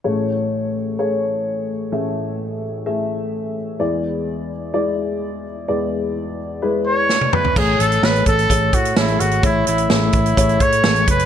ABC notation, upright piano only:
X:1
M:4/4
L:1/16
Q:1/4=128
K:A
V:1 name="Upright piano"
[A,Gc]6 z2 [A,Gc]6 z2 | [A,Ge]6 z2 [A,Ge]6 z2 | [G,Ed]6 z2 [G,Ed]6 z2 | [G,Ed]6 z2 [G,EB]6 z2 |
[A,Gc]3 z [A,Gc]3 z [A,Gc]3 z [A,Gc]3 z | [A,Gc]3 z [A,Gc]3 z [A,Gc]3 z [A,Gc]3 z |]
V:2 name="Upright piano" clef=bass
[A,,,A,,]16 | [A,,,A,,]16 | [E,,E,]16 | [E,,E,]16 |
A,,6 z8 z2 | A,,6 z8 z2 |]